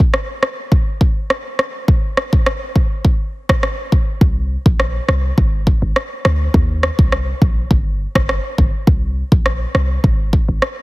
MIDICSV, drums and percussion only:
0, 0, Header, 1, 2, 480
1, 0, Start_track
1, 0, Tempo, 582524
1, 1552, Time_signature, 4, 2, 24, 8
1, 8917, End_track
2, 0, Start_track
2, 0, Title_t, "Drums"
2, 0, Note_on_c, 9, 36, 100
2, 81, Note_off_c, 9, 36, 0
2, 112, Note_on_c, 9, 37, 93
2, 194, Note_off_c, 9, 37, 0
2, 351, Note_on_c, 9, 37, 86
2, 433, Note_off_c, 9, 37, 0
2, 591, Note_on_c, 9, 36, 92
2, 673, Note_off_c, 9, 36, 0
2, 831, Note_on_c, 9, 36, 91
2, 914, Note_off_c, 9, 36, 0
2, 1073, Note_on_c, 9, 37, 91
2, 1155, Note_off_c, 9, 37, 0
2, 1310, Note_on_c, 9, 37, 95
2, 1393, Note_off_c, 9, 37, 0
2, 1551, Note_on_c, 9, 36, 106
2, 1633, Note_off_c, 9, 36, 0
2, 1791, Note_on_c, 9, 37, 90
2, 1873, Note_off_c, 9, 37, 0
2, 1918, Note_on_c, 9, 36, 100
2, 2000, Note_off_c, 9, 36, 0
2, 2031, Note_on_c, 9, 37, 98
2, 2113, Note_off_c, 9, 37, 0
2, 2271, Note_on_c, 9, 36, 92
2, 2353, Note_off_c, 9, 36, 0
2, 2510, Note_on_c, 9, 36, 97
2, 2592, Note_off_c, 9, 36, 0
2, 2878, Note_on_c, 9, 36, 89
2, 2880, Note_on_c, 9, 37, 98
2, 2960, Note_off_c, 9, 36, 0
2, 2962, Note_off_c, 9, 37, 0
2, 2991, Note_on_c, 9, 37, 94
2, 3074, Note_off_c, 9, 37, 0
2, 3232, Note_on_c, 9, 36, 89
2, 3314, Note_off_c, 9, 36, 0
2, 3471, Note_on_c, 9, 36, 111
2, 3553, Note_off_c, 9, 36, 0
2, 3838, Note_on_c, 9, 36, 104
2, 3921, Note_off_c, 9, 36, 0
2, 3952, Note_on_c, 9, 37, 89
2, 4034, Note_off_c, 9, 37, 0
2, 4190, Note_on_c, 9, 37, 90
2, 4273, Note_off_c, 9, 37, 0
2, 4430, Note_on_c, 9, 36, 93
2, 4513, Note_off_c, 9, 36, 0
2, 4671, Note_on_c, 9, 36, 95
2, 4753, Note_off_c, 9, 36, 0
2, 4912, Note_on_c, 9, 37, 91
2, 4995, Note_off_c, 9, 37, 0
2, 5149, Note_on_c, 9, 37, 97
2, 5232, Note_off_c, 9, 37, 0
2, 5390, Note_on_c, 9, 36, 104
2, 5473, Note_off_c, 9, 36, 0
2, 5630, Note_on_c, 9, 37, 92
2, 5712, Note_off_c, 9, 37, 0
2, 5758, Note_on_c, 9, 36, 102
2, 5840, Note_off_c, 9, 36, 0
2, 5870, Note_on_c, 9, 37, 94
2, 5952, Note_off_c, 9, 37, 0
2, 6111, Note_on_c, 9, 36, 89
2, 6194, Note_off_c, 9, 36, 0
2, 6350, Note_on_c, 9, 36, 92
2, 6433, Note_off_c, 9, 36, 0
2, 6719, Note_on_c, 9, 36, 87
2, 6721, Note_on_c, 9, 37, 98
2, 6801, Note_off_c, 9, 36, 0
2, 6803, Note_off_c, 9, 37, 0
2, 6832, Note_on_c, 9, 37, 91
2, 6915, Note_off_c, 9, 37, 0
2, 7073, Note_on_c, 9, 36, 97
2, 7155, Note_off_c, 9, 36, 0
2, 7311, Note_on_c, 9, 36, 112
2, 7394, Note_off_c, 9, 36, 0
2, 7679, Note_on_c, 9, 36, 101
2, 7762, Note_off_c, 9, 36, 0
2, 7792, Note_on_c, 9, 37, 95
2, 7875, Note_off_c, 9, 37, 0
2, 8032, Note_on_c, 9, 37, 91
2, 8114, Note_off_c, 9, 37, 0
2, 8272, Note_on_c, 9, 36, 92
2, 8354, Note_off_c, 9, 36, 0
2, 8512, Note_on_c, 9, 36, 91
2, 8595, Note_off_c, 9, 36, 0
2, 8753, Note_on_c, 9, 37, 92
2, 8835, Note_off_c, 9, 37, 0
2, 8917, End_track
0, 0, End_of_file